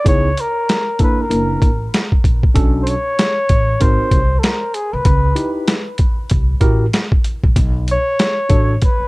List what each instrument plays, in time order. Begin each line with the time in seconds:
0.05 upright bass C#2, tine electric piano B3 D#4 E4 G#4, kick, closed hi-hat
0.09 flugelhorn C#5
0.37 flugelhorn A#4, closed hi-hat
0.69 snare, closed hi-hat
0.99 tine electric piano A#3 D4 E4 A4, flugelhorn B4, kick, closed hi-hat
1.22 flugelhorn A#4
1.29 upright bass F#1, tine electric piano A#3 D4 E4 A#4, closed hi-hat
1.62 upright bass A1, kick, closed hi-hat
1.94 snare, closed hi-hat
2.12 kick
2.24 upright bass A#1, kick, closed hi-hat
2.43 kick
2.54 upright bass B1, tine electric piano C#4 D4 F#4 A4, kick, closed hi-hat
2.83 flugelhorn C5
2.87 flugelhorn C#5, closed hi-hat
3.19 snare, closed hi-hat
3.49 upright bass A1, kick, closed hi-hat
3.80 upright bass G#1, tine electric piano C4 D#4 F#4 A#4, flugelhorn C5, kick, closed hi-hat
3.99 muted upright bass stroke
4.11 upright bass C2, kick, closed hi-hat
4.39 flugelhorn A4
4.43 flugelhorn A#4, snare, closed hi-hat
4.74 flugelhorn G#4, closed hi-hat
4.93 upright bass C2, flugelhorn B4
5.05 upright bass C#2, kick, closed hi-hat
5.35 tine electric piano D#4 E4 G4 B4, closed hi-hat
5.67 snare, closed hi-hat
5.98 kick, closed hi-hat
6.30 upright bass C2, kick, closed hi-hat
6.61 upright bass A1, tine electric piano E4 F#4 G4 A#4, kick, closed hi-hat
6.93 snare, closed hi-hat
7.12 kick
7.24 closed hi-hat
7.44 upright bass A#1, kick
7.56 upright bass B1, kick, closed hi-hat
7.88 flugelhorn C#5, closed hi-hat
8.19 snare, closed hi-hat
8.49 upright bass A1, tine electric piano D4 F#4 A4 C#5, kick, closed hi-hat
8.82 flugelhorn B4, kick, closed hi-hat
9.00 muted upright bass stroke